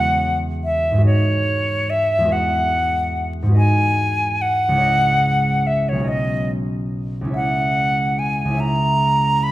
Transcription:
Already playing: harp E2 G#3 E4 F#4 B4 C#5, flute F#5
0.64 flute E5
0.91 harp G#2 G#3
0.98 harp F#4 B4
1.04 flute C#5, harp D#5
1.90 flute E5
2.18 harp E2 G#3
2.25 harp F#4 B4
2.30 harp E5, flute F#5
3.43 harp G#2 G#3
3.49 harp F#4 B4
3.54 harp D#5, flute G#5
4.42 flute F#5
4.68 harp C#2 G#3
4.74 harp E4 C#5
4.80 harp D#5
5.67 flute E5
5.89 harp B1, flute C#5
5.95 harp C#4 F#4
6.01 harp C#5 D#5
6.08 flute D#5
7.21 harp C#2 C#4
7.27 harp E4 C#5
7.33 harp E5, flute F#5
8.19 flute G#5
8.45 harp C#2 C#4
8.51 harp E4 C#5
8.57 harp E5, flute A#5
9.43 flute B5

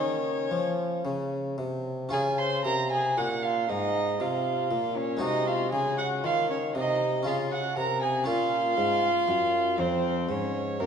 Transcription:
Already playing: harpsichord D#3 A#3 C#4, bassoon D#3, violin C#4
0.00 violin C#5
0.51 harpsichord F3, bassoon F3
1.05 harpsichord C#3, bassoon C#3
1.58 harpsichord C3, bassoon C3
2.09 harpsichord C#3 C#4 F4, bassoon C#3, violin G#5
2.13 violin G#4
2.38 violin C5 C6
2.65 harpsichord C3, bassoon C3, violin A#4 A#5
2.91 violin G#4 G#5
3.17 bassoon A#2, harpsichord A#2, violin F#4 F#5
3.43 violin F4 F5
3.69 bassoon G#2, harpsichord G#2, violin D#4 D#5
4.20 harpsichord C3, bassoon C3, violin F4 F5
4.71 harpsichord A#2, bassoon A#2
4.96 violin C#4 C#5
5.17 harpsichord G#3 D#4 F#4
5.21 harpsichord C3, bassoon C3, violin D#4 D#5
5.47 violin F4 F5
5.72 harpsichord C#3, bassoon C#3, violin G#4 G#5
5.97 violin F#4 F#5
6.24 harpsichord D#3, bassoon D#3, violin F4 F5
6.50 violin C#4 C#5
6.75 harpsichord C3, bassoon C3, violin D#4 D#5
7.23 harpsichord C#3 C#4 F4, bassoon C#3, violin F4
7.27 violin F5
7.51 violin F#4 F#5
7.76 harpsichord C3, bassoon C3, violin A#4 A#5
8.02 violin G#4 G#5
8.24 bassoon A#2, harpsichord A#2 C#4 F4, violin F4 F5
8.77 harpsichord G#2, bassoon G#2
9.28 harpsichord F#2, bassoon F#2
9.78 harpsichord F2, bassoon F2, violin C4 C5
10.29 harpsichord G#2, bassoon G#2, violin C#4 C#5
10.80 harpsichord F#2, bassoon F#2, violin A#3 A#4

